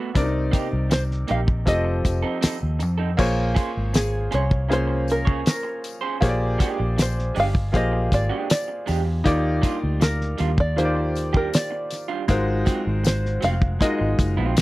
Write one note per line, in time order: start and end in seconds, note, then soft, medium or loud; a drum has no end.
0.00 0.17 G3 medium
0.00 0.10 A3 medium
0.00 0.10 B3 medium
0.00 0.15 D4 medium
0.00 0.18 F#4 medium
0.00 0.17 A4 medium
0.00 0.17 B4 medium
0.00 0.13 B5 loud
0.15 0.50 C2 loud
0.15 1.23 C3 medium
0.15 1.23 C4 medium
0.15 0.22 D4 medium
0.15 1.24 A#4 medium
0.15 1.24 D5 medium
0.15 kick loud
0.15 closed hi-hat medium
0.15 tambourine medium
0.22 1.27 D#4 medium
0.51 0.66 A#3 medium
0.51 0.67 D#4 medium
0.51 0.67 G4 medium
0.51 kick loud
0.51 closed hi-hat medium
0.51 tambourine soft
0.73 1.24 C2 medium
0.90 1.03 C5 loud
0.90 muted clean electric guitar stroke soft
0.90 snare loud
0.90 closed hi-hat medium
0.90 tambourine medium
1.11 snare soft
1.28 1.64 A#1 medium
1.28 1.39 A#3 medium
1.28 1.40 D#4 medium
1.28 1.40 G4 medium
1.28 1.41 F5 medium
1.28 closed hi-hat medium
1.47 muted clean electric guitar stroke soft
1.47 kick loud
1.66 2.01 F1 loud
1.66 2.74 F3 medium
1.66 2.75 C4 medium
1.66 2.75 G4 medium
1.66 2.75 A4 medium
1.66 2.75 D#5 medium
1.66 2.77 D#5 medium
1.66 muted clean electric guitar stroke soft
1.66 kick loud
1.66 closed hi-hat medium
1.66 tambourine soft
1.84 muted clean electric guitar stroke soft
2.05 2.22 F1 medium
2.05 kick medium
2.05 closed hi-hat medium
2.05 tambourine soft
2.22 2.38 C4 medium
2.22 2.38 D#4 medium
2.22 2.37 A4 medium
2.41 2.56 C4 medium
2.41 2.56 D#4 medium
2.41 2.57 A4 medium
2.41 muted fingered electric bass stroke soft
2.41 snare loud
2.41 closed hi-hat loud
2.41 tambourine medium
2.63 2.82 D#2 medium
2.79 3.16 F2 medium
2.79 muted clean electric guitar stroke soft
2.79 closed hi-hat medium
2.79 tambourine medium
2.98 3.11 C4 soft
2.98 3.10 D#4 medium
2.98 3.10 A4 medium
3.17 3.53 A#1 loud
3.17 4.26 A#3 loud
3.17 4.26 F4 medium
3.17 4.27 G#4 medium
3.17 4.27 C5 medium
3.17 4.27 C#5 loud
3.17 kick loud
3.17 crash loud
3.17 tambourine medium
3.55 3.69 C#4 medium
3.55 3.70 G#4 medium
3.55 3.70 C5 medium
3.55 kick loud
3.55 closed hi-hat medium
3.55 tambourine soft
3.77 4.27 G#1 medium
3.94 4.34 G#4 medium
3.94 muted clean electric guitar stroke soft
3.94 snare loud
3.94 closed hi-hat medium
3.94 tambourine medium
4.31 5.43 C2 loud
4.31 4.43 C#4 medium
4.31 4.43 G#4 medium
4.31 4.43 C5 medium
4.31 4.69 C#5 medium
4.31 closed hi-hat medium
4.50 muted clean electric guitar stroke soft
4.50 kick loud
4.69 5.78 A#3 medium
4.69 5.79 C#4 medium
4.69 5.78 F4 medium
4.69 5.78 G#4 medium
4.69 5.78 C5 medium
4.69 muted clean electric guitar stroke soft
4.69 closed hi-hat medium
4.73 5.11 C5 loud
4.87 muted clean electric guitar stroke soft
5.08 5.47 A#4 medium
5.08 closed hi-hat medium
5.08 tambourine soft
5.25 5.41 C#4 medium
5.25 5.41 G#4 medium
5.25 5.40 C#5 medium
5.25 kick loud
5.45 6.00 A#4 medium
5.45 muted clean electric guitar stroke soft
5.45 snare loud
5.45 closed hi-hat loud
5.45 tambourine loud
5.63 muted clean electric guitar stroke soft
5.84 closed hi-hat medium
5.84 tambourine medium
6.01 6.17 C#4 medium
6.01 6.17 G#4 medium
6.01 6.16 C5 medium
6.21 6.56 A#1 loud
6.21 7.29 A#3 medium
6.21 7.29 F4 medium
6.21 7.30 G4 medium
6.21 7.30 G#4 medium
6.21 7.30 C5 medium
6.21 6.29 C#5 medium
6.21 kick loud
6.21 closed hi-hat medium
6.21 tambourine medium
6.29 7.34 D5 loud
6.58 6.79 G#3 medium
6.58 6.79 D4 medium
6.58 6.80 G4 medium
6.58 kick loud
6.58 closed hi-hat medium
6.58 tambourine soft
6.80 7.30 A#1 medium
6.97 muted clean electric guitar stroke soft
6.97 snare loud
6.97 closed hi-hat medium
6.97 tambourine medium
7.02 7.39 C5 medium
7.19 snare soft
7.35 7.70 G1 loud
7.35 7.46 G#3 medium
7.35 7.47 D4 medium
7.35 7.47 G4 medium
7.35 open hi-hat medium
7.40 7.73 F5 loud
7.54 muted clean electric guitar stroke medium
7.54 kick loud
7.72 8.08 A#1 medium
7.72 8.81 A#3 medium
7.72 8.81 F4 medium
7.72 8.81 G4 medium
7.72 8.81 G#4 medium
7.72 8.82 C5 medium
7.72 8.82 F5 medium
7.72 muted clean electric guitar stroke soft
7.72 kick loud
7.72 closed hi-hat medium
7.72 tambourine soft
7.76 8.14 D#5 loud
7.92 muted clean electric guitar stroke soft
8.12 8.29 G#1 loud
8.12 8.48 D5 loud
8.12 kick medium
8.12 closed hi-hat medium
8.12 tambourine soft
8.29 8.48 G#3 medium
8.29 8.48 D4 medium
8.29 8.49 G4 medium
8.49 9.03 D5 loud
8.49 muted clean electric guitar stroke soft
8.49 snare loud
8.49 closed hi-hat loud
8.49 tambourine loud
8.68 muted clean electric guitar stroke soft
8.86 9.22 E2 medium
8.86 9.01 G#3 medium
8.86 9.01 D4 medium
8.86 9.02 G4 medium
8.86 snare soft
8.86 open hi-hat medium
8.86 tambourine medium
9.05 muted clean electric guitar stroke soft
9.24 9.60 D#2 loud
9.24 10.33 A#3 medium
9.24 10.33 D#4 medium
9.24 10.34 F4 medium
9.24 10.34 G4 medium
9.24 10.34 D5 loud
9.24 kick loud
9.24 closed hi-hat medium
9.24 tambourine medium
9.62 9.76 G3 medium
9.62 9.77 D4 medium
9.62 9.77 F4 loud
9.62 kick medium
9.62 closed hi-hat medium
9.62 tambourine soft
9.84 10.34 D2 medium
10.00 10.61 A#4 loud
10.00 muted clean electric guitar stroke soft
10.00 snare loud
10.00 closed hi-hat medium
10.00 tambourine medium
10.21 snare soft
10.38 11.50 D#2 loud
10.38 10.49 G3 medium
10.38 10.50 D4 medium
10.38 10.50 F4 medium
10.38 closed hi-hat medium
10.38 tambourine soft
10.57 10.77 D5 loud
10.57 muted clean electric guitar stroke soft
10.57 kick loud
10.76 11.85 D#3 medium
10.76 11.85 A#3 medium
10.76 11.86 F4 medium
10.76 11.86 G4 medium
10.76 11.36 C5 loud
10.76 10.84 C5 medium
10.76 muted clean electric guitar stroke soft
10.76 closed hi-hat loud
10.85 11.89 D5 medium
10.95 muted clean electric guitar stroke soft
11.15 closed hi-hat medium
11.15 tambourine soft
11.33 11.48 G3 medium
11.33 11.48 D4 medium
11.33 11.47 G4 medium
11.33 11.55 A#4 medium
11.33 kick loud
11.52 12.07 D5 loud
11.52 muted clean electric guitar stroke soft
11.52 snare loud
11.52 closed hi-hat loud
11.52 tambourine loud
11.70 muted clean electric guitar stroke soft
11.91 snare soft
11.91 closed hi-hat medium
11.91 tambourine medium
12.08 12.24 G3 medium
12.08 12.24 D4 medium
12.08 12.23 F4 medium
12.28 12.63 G#1 loud
12.28 13.37 G#3 medium
12.28 13.37 D#4 medium
12.28 13.37 F4 medium
12.28 13.37 F#4 medium
12.28 13.38 A#4 medium
12.28 13.38 C5 loud
12.28 kick loud
12.28 closed hi-hat medium
12.28 tambourine medium
12.65 12.80 F#3 medium
12.65 12.81 C4 medium
12.65 12.81 F4 medium
12.65 kick loud
12.65 closed hi-hat medium
12.65 tambourine soft
12.87 13.38 G#1 loud
13.04 13.41 C5 loud
13.04 muted clean electric guitar stroke soft
13.04 snare loud
13.04 closed hi-hat medium
13.04 tambourine loud
13.26 snare soft
13.41 13.77 F1 loud
13.41 13.53 F#3 medium
13.41 13.54 C4 medium
13.41 13.54 F4 medium
13.41 13.79 F5 loud
13.41 closed hi-hat medium
13.41 tambourine soft
13.61 muted clean electric guitar stroke soft
13.61 kick loud
13.79 14.62 G#3 medium
13.79 14.62 D#4 medium
13.79 14.62 F4 medium
13.79 14.62 F#4 medium
13.79 14.62 A#4 medium
13.79 14.62 D#5 medium
13.79 muted clean electric guitar stroke soft
13.79 kick loud
13.79 closed hi-hat medium
13.79 tambourine soft
13.99 14.17 G#1 loud
13.99 muted clean electric guitar stroke medium
14.19 14.36 F#1 medium
14.19 kick medium
14.19 closed hi-hat medium
14.19 tambourine soft
14.37 14.55 A#1 medium
14.37 14.55 F#3 medium
14.37 14.56 C4 medium
14.37 14.56 F4 medium
14.57 14.62 G#1 medium
14.57 snare loud
14.57 closed hi-hat loud
14.57 tambourine loud